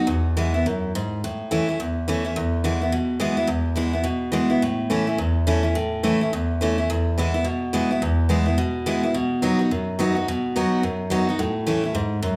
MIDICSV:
0, 0, Header, 1, 2, 480
1, 0, Start_track
1, 0, Key_signature, 4, "major"
1, 0, Tempo, 282885
1, 141, Time_signature, 4, 2, 24, 8
1, 20972, End_track
2, 0, Start_track
2, 0, Title_t, "Steel-string acoustic guitar"
2, 0, Program_c, 0, 25
2, 118, Note_on_c, 0, 40, 97
2, 622, Note_on_c, 0, 52, 85
2, 628, Note_on_c, 0, 56, 93
2, 637, Note_on_c, 0, 59, 88
2, 652, Note_on_c, 0, 64, 95
2, 897, Note_off_c, 0, 64, 0
2, 900, Note_off_c, 0, 52, 0
2, 904, Note_off_c, 0, 56, 0
2, 908, Note_off_c, 0, 59, 0
2, 917, Note_on_c, 0, 64, 64
2, 946, Note_on_c, 0, 59, 49
2, 1055, Note_off_c, 0, 40, 0
2, 1100, Note_off_c, 0, 64, 0
2, 1114, Note_off_c, 0, 59, 0
2, 1120, Note_on_c, 0, 42, 88
2, 1575, Note_off_c, 0, 42, 0
2, 1615, Note_on_c, 0, 44, 94
2, 2064, Note_off_c, 0, 44, 0
2, 2104, Note_on_c, 0, 45, 98
2, 2563, Note_on_c, 0, 52, 88
2, 2567, Note_on_c, 0, 57, 86
2, 2571, Note_on_c, 0, 61, 94
2, 2583, Note_on_c, 0, 64, 94
2, 2834, Note_off_c, 0, 52, 0
2, 2837, Note_off_c, 0, 57, 0
2, 2839, Note_off_c, 0, 61, 0
2, 2841, Note_off_c, 0, 64, 0
2, 2861, Note_on_c, 0, 64, 57
2, 2887, Note_on_c, 0, 61, 48
2, 3012, Note_off_c, 0, 45, 0
2, 3035, Note_off_c, 0, 64, 0
2, 3048, Note_off_c, 0, 61, 0
2, 3051, Note_on_c, 0, 40, 87
2, 3525, Note_on_c, 0, 52, 88
2, 3535, Note_on_c, 0, 57, 81
2, 3545, Note_on_c, 0, 61, 94
2, 3547, Note_on_c, 0, 64, 91
2, 3791, Note_off_c, 0, 64, 0
2, 3797, Note_off_c, 0, 52, 0
2, 3802, Note_off_c, 0, 57, 0
2, 3807, Note_off_c, 0, 61, 0
2, 3811, Note_on_c, 0, 64, 70
2, 3834, Note_on_c, 0, 61, 57
2, 3966, Note_off_c, 0, 40, 0
2, 3992, Note_off_c, 0, 64, 0
2, 4003, Note_off_c, 0, 61, 0
2, 4007, Note_on_c, 0, 40, 94
2, 4479, Note_on_c, 0, 52, 86
2, 4485, Note_on_c, 0, 56, 93
2, 4491, Note_on_c, 0, 59, 97
2, 4503, Note_on_c, 0, 64, 91
2, 4755, Note_off_c, 0, 52, 0
2, 4757, Note_off_c, 0, 64, 0
2, 4758, Note_off_c, 0, 56, 0
2, 4761, Note_off_c, 0, 59, 0
2, 4778, Note_on_c, 0, 64, 59
2, 4806, Note_on_c, 0, 59, 46
2, 4925, Note_off_c, 0, 40, 0
2, 4956, Note_off_c, 0, 64, 0
2, 4961, Note_on_c, 0, 47, 93
2, 4970, Note_off_c, 0, 59, 0
2, 5424, Note_on_c, 0, 52, 99
2, 5430, Note_on_c, 0, 56, 88
2, 5443, Note_on_c, 0, 59, 97
2, 5448, Note_on_c, 0, 64, 99
2, 5698, Note_off_c, 0, 64, 0
2, 5708, Note_off_c, 0, 52, 0
2, 5712, Note_off_c, 0, 56, 0
2, 5718, Note_off_c, 0, 59, 0
2, 5719, Note_on_c, 0, 64, 65
2, 5743, Note_on_c, 0, 59, 50
2, 5883, Note_off_c, 0, 47, 0
2, 5895, Note_on_c, 0, 40, 92
2, 5907, Note_off_c, 0, 64, 0
2, 5919, Note_off_c, 0, 59, 0
2, 6373, Note_on_c, 0, 52, 81
2, 6388, Note_on_c, 0, 56, 93
2, 6395, Note_on_c, 0, 59, 94
2, 6403, Note_on_c, 0, 64, 95
2, 6654, Note_off_c, 0, 64, 0
2, 6663, Note_off_c, 0, 52, 0
2, 6671, Note_off_c, 0, 56, 0
2, 6674, Note_on_c, 0, 64, 61
2, 6675, Note_off_c, 0, 59, 0
2, 6697, Note_on_c, 0, 59, 50
2, 6830, Note_off_c, 0, 40, 0
2, 6848, Note_on_c, 0, 47, 92
2, 6865, Note_off_c, 0, 64, 0
2, 6877, Note_off_c, 0, 59, 0
2, 7325, Note_on_c, 0, 52, 91
2, 7346, Note_on_c, 0, 56, 96
2, 7352, Note_on_c, 0, 59, 98
2, 7355, Note_on_c, 0, 64, 96
2, 7607, Note_off_c, 0, 64, 0
2, 7620, Note_off_c, 0, 52, 0
2, 7628, Note_on_c, 0, 64, 60
2, 7631, Note_off_c, 0, 56, 0
2, 7633, Note_off_c, 0, 59, 0
2, 7655, Note_on_c, 0, 59, 54
2, 7787, Note_off_c, 0, 47, 0
2, 7823, Note_off_c, 0, 64, 0
2, 7837, Note_off_c, 0, 59, 0
2, 7844, Note_on_c, 0, 45, 91
2, 8310, Note_on_c, 0, 52, 82
2, 8317, Note_on_c, 0, 57, 84
2, 8325, Note_on_c, 0, 61, 92
2, 8331, Note_on_c, 0, 64, 94
2, 8583, Note_off_c, 0, 64, 0
2, 8592, Note_off_c, 0, 52, 0
2, 8596, Note_off_c, 0, 57, 0
2, 8600, Note_off_c, 0, 61, 0
2, 8603, Note_on_c, 0, 64, 61
2, 8636, Note_on_c, 0, 61, 46
2, 8765, Note_off_c, 0, 45, 0
2, 8791, Note_off_c, 0, 64, 0
2, 8795, Note_on_c, 0, 40, 90
2, 8807, Note_off_c, 0, 61, 0
2, 9277, Note_on_c, 0, 52, 84
2, 9280, Note_on_c, 0, 57, 99
2, 9290, Note_on_c, 0, 61, 107
2, 9293, Note_on_c, 0, 64, 111
2, 9533, Note_off_c, 0, 64, 0
2, 9554, Note_on_c, 0, 64, 64
2, 9556, Note_off_c, 0, 52, 0
2, 9556, Note_off_c, 0, 61, 0
2, 9558, Note_off_c, 0, 57, 0
2, 9577, Note_on_c, 0, 61, 55
2, 9720, Note_off_c, 0, 40, 0
2, 9746, Note_off_c, 0, 64, 0
2, 9757, Note_off_c, 0, 61, 0
2, 9760, Note_on_c, 0, 45, 95
2, 10237, Note_on_c, 0, 52, 88
2, 10243, Note_on_c, 0, 57, 100
2, 10253, Note_on_c, 0, 61, 87
2, 10254, Note_on_c, 0, 64, 99
2, 10516, Note_off_c, 0, 52, 0
2, 10518, Note_off_c, 0, 64, 0
2, 10519, Note_off_c, 0, 57, 0
2, 10524, Note_off_c, 0, 61, 0
2, 10538, Note_on_c, 0, 64, 61
2, 10568, Note_on_c, 0, 61, 53
2, 10682, Note_off_c, 0, 45, 0
2, 10718, Note_off_c, 0, 64, 0
2, 10733, Note_off_c, 0, 61, 0
2, 10740, Note_on_c, 0, 40, 84
2, 11214, Note_on_c, 0, 52, 83
2, 11231, Note_on_c, 0, 57, 98
2, 11235, Note_on_c, 0, 61, 89
2, 11245, Note_on_c, 0, 64, 107
2, 11483, Note_off_c, 0, 64, 0
2, 11484, Note_off_c, 0, 52, 0
2, 11493, Note_off_c, 0, 57, 0
2, 11495, Note_off_c, 0, 61, 0
2, 11504, Note_on_c, 0, 64, 62
2, 11526, Note_on_c, 0, 61, 50
2, 11652, Note_off_c, 0, 40, 0
2, 11680, Note_off_c, 0, 64, 0
2, 11691, Note_off_c, 0, 61, 0
2, 11704, Note_on_c, 0, 40, 95
2, 12175, Note_on_c, 0, 52, 82
2, 12189, Note_on_c, 0, 56, 97
2, 12202, Note_on_c, 0, 59, 97
2, 12203, Note_on_c, 0, 64, 102
2, 12437, Note_off_c, 0, 64, 0
2, 12444, Note_off_c, 0, 52, 0
2, 12451, Note_off_c, 0, 56, 0
2, 12457, Note_off_c, 0, 59, 0
2, 12457, Note_on_c, 0, 64, 65
2, 12483, Note_on_c, 0, 59, 52
2, 12613, Note_off_c, 0, 40, 0
2, 12634, Note_on_c, 0, 47, 91
2, 12636, Note_off_c, 0, 64, 0
2, 12649, Note_off_c, 0, 59, 0
2, 13117, Note_on_c, 0, 52, 94
2, 13129, Note_on_c, 0, 56, 91
2, 13133, Note_on_c, 0, 59, 98
2, 13147, Note_on_c, 0, 64, 94
2, 13394, Note_off_c, 0, 52, 0
2, 13396, Note_off_c, 0, 64, 0
2, 13400, Note_off_c, 0, 56, 0
2, 13402, Note_off_c, 0, 59, 0
2, 13417, Note_on_c, 0, 64, 66
2, 13444, Note_on_c, 0, 59, 54
2, 13556, Note_off_c, 0, 47, 0
2, 13595, Note_off_c, 0, 64, 0
2, 13607, Note_on_c, 0, 40, 97
2, 13609, Note_off_c, 0, 59, 0
2, 14066, Note_on_c, 0, 52, 86
2, 14079, Note_on_c, 0, 56, 85
2, 14080, Note_on_c, 0, 59, 95
2, 14094, Note_on_c, 0, 64, 101
2, 14330, Note_off_c, 0, 64, 0
2, 14347, Note_off_c, 0, 52, 0
2, 14350, Note_on_c, 0, 64, 56
2, 14354, Note_off_c, 0, 56, 0
2, 14354, Note_off_c, 0, 59, 0
2, 14389, Note_on_c, 0, 59, 46
2, 14522, Note_off_c, 0, 40, 0
2, 14541, Note_off_c, 0, 64, 0
2, 14555, Note_on_c, 0, 47, 87
2, 14560, Note_off_c, 0, 59, 0
2, 15035, Note_on_c, 0, 52, 96
2, 15045, Note_on_c, 0, 56, 96
2, 15049, Note_on_c, 0, 59, 92
2, 15058, Note_on_c, 0, 64, 86
2, 15309, Note_off_c, 0, 64, 0
2, 15311, Note_off_c, 0, 52, 0
2, 15315, Note_off_c, 0, 56, 0
2, 15317, Note_off_c, 0, 59, 0
2, 15329, Note_on_c, 0, 64, 59
2, 15357, Note_on_c, 0, 59, 51
2, 15475, Note_off_c, 0, 47, 0
2, 15509, Note_off_c, 0, 64, 0
2, 15515, Note_on_c, 0, 47, 96
2, 15523, Note_off_c, 0, 59, 0
2, 15987, Note_on_c, 0, 54, 88
2, 15994, Note_on_c, 0, 59, 89
2, 16000, Note_on_c, 0, 63, 101
2, 16011, Note_on_c, 0, 66, 94
2, 16252, Note_off_c, 0, 66, 0
2, 16265, Note_off_c, 0, 54, 0
2, 16269, Note_off_c, 0, 59, 0
2, 16271, Note_off_c, 0, 63, 0
2, 16272, Note_on_c, 0, 66, 57
2, 16303, Note_on_c, 0, 63, 48
2, 16433, Note_off_c, 0, 47, 0
2, 16459, Note_off_c, 0, 66, 0
2, 16474, Note_off_c, 0, 63, 0
2, 16481, Note_on_c, 0, 42, 84
2, 16947, Note_on_c, 0, 54, 98
2, 16960, Note_on_c, 0, 59, 100
2, 16969, Note_on_c, 0, 63, 94
2, 16975, Note_on_c, 0, 66, 102
2, 17200, Note_off_c, 0, 66, 0
2, 17220, Note_on_c, 0, 66, 59
2, 17224, Note_off_c, 0, 54, 0
2, 17226, Note_off_c, 0, 63, 0
2, 17230, Note_off_c, 0, 59, 0
2, 17246, Note_on_c, 0, 63, 59
2, 17394, Note_off_c, 0, 42, 0
2, 17411, Note_off_c, 0, 66, 0
2, 17424, Note_off_c, 0, 63, 0
2, 17447, Note_on_c, 0, 47, 92
2, 17913, Note_on_c, 0, 54, 91
2, 17920, Note_on_c, 0, 59, 95
2, 17927, Note_on_c, 0, 63, 100
2, 17937, Note_on_c, 0, 66, 98
2, 18356, Note_off_c, 0, 47, 0
2, 18368, Note_off_c, 0, 54, 0
2, 18372, Note_off_c, 0, 59, 0
2, 18375, Note_off_c, 0, 63, 0
2, 18381, Note_off_c, 0, 66, 0
2, 18382, Note_on_c, 0, 42, 88
2, 18837, Note_on_c, 0, 54, 90
2, 18856, Note_on_c, 0, 63, 106
2, 18859, Note_on_c, 0, 59, 93
2, 18864, Note_on_c, 0, 66, 109
2, 19126, Note_off_c, 0, 54, 0
2, 19132, Note_off_c, 0, 66, 0
2, 19135, Note_off_c, 0, 63, 0
2, 19137, Note_off_c, 0, 59, 0
2, 19152, Note_on_c, 0, 66, 66
2, 19173, Note_on_c, 0, 63, 62
2, 19301, Note_off_c, 0, 42, 0
2, 19327, Note_on_c, 0, 45, 94
2, 19334, Note_off_c, 0, 66, 0
2, 19345, Note_off_c, 0, 63, 0
2, 19794, Note_on_c, 0, 52, 90
2, 19799, Note_on_c, 0, 57, 90
2, 19809, Note_on_c, 0, 61, 94
2, 19820, Note_on_c, 0, 64, 102
2, 20064, Note_off_c, 0, 64, 0
2, 20083, Note_off_c, 0, 52, 0
2, 20084, Note_on_c, 0, 64, 58
2, 20085, Note_off_c, 0, 57, 0
2, 20090, Note_off_c, 0, 61, 0
2, 20110, Note_on_c, 0, 61, 49
2, 20253, Note_off_c, 0, 45, 0
2, 20271, Note_on_c, 0, 44, 95
2, 20279, Note_off_c, 0, 64, 0
2, 20292, Note_off_c, 0, 61, 0
2, 20736, Note_off_c, 0, 44, 0
2, 20743, Note_on_c, 0, 42, 99
2, 20972, Note_off_c, 0, 42, 0
2, 20972, End_track
0, 0, End_of_file